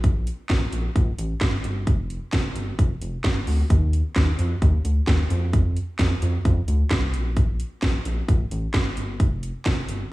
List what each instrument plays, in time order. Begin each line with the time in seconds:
Already playing: analog synth bass A#1
0.04 kick, closed hi-hat
0.27 closed hi-hat
0.50 analog synth bass A#1, kick, snare, clap, closed hi-hat
0.73 analog synth bass A#1, closed hi-hat
0.96 analog synth bass A#1, kick, closed hi-hat
1.18 analog synth bass A1, closed hi-hat
1.41 analog synth bass G1, kick, snare, clap, closed hi-hat
1.64 analog synth bass G1, closed hi-hat
1.87 analog synth bass F1, kick, closed hi-hat
2.10 closed hi-hat
2.33 analog synth bass F1, kick, snare, clap, closed hi-hat
2.56 analog synth bass G1, closed hi-hat
2.79 analog synth bass F1, kick, closed hi-hat
3.02 analog synth bass F1, closed hi-hat
3.24 analog synth bass G1, kick, snare, clap, closed hi-hat
3.47 analog synth bass D2, open hi-hat
3.70 analog synth bass D#2, kick, closed hi-hat
3.93 closed hi-hat
4.16 analog synth bass D#2, kick, snare, clap, closed hi-hat
4.39 analog synth bass F2, closed hi-hat
4.62 analog synth bass D#2, kick, closed hi-hat
4.85 analog synth bass D2, closed hi-hat
5.07 analog synth bass D#2, kick, snare, clap, closed hi-hat
5.30 analog synth bass F2, closed hi-hat
5.53 kick, closed hi-hat
5.77 closed hi-hat
5.99 analog synth bass F2, kick, snare, clap, closed hi-hat
6.22 analog synth bass F2, closed hi-hat
6.45 analog synth bass F2, kick, closed hi-hat
6.68 analog synth bass D2, closed hi-hat
6.91 analog synth bass C2, kick, snare, clap, closed hi-hat
7.14 analog synth bass A#1, closed hi-hat
7.37 kick, closed hi-hat
7.60 closed hi-hat
7.83 analog synth bass A#1, kick, snare, clap, closed hi-hat
8.05 analog synth bass A#1, closed hi-hat
8.29 analog synth bass A#1, kick, closed hi-hat
8.51 analog synth bass A1, closed hi-hat
8.74 analog synth bass G1, kick, snare, clap, closed hi-hat
8.97 analog synth bass G1, closed hi-hat
9.20 analog synth bass F1, kick, closed hi-hat
9.43 closed hi-hat
9.66 analog synth bass F1, kick, snare, clap, closed hi-hat
9.89 analog synth bass G1, closed hi-hat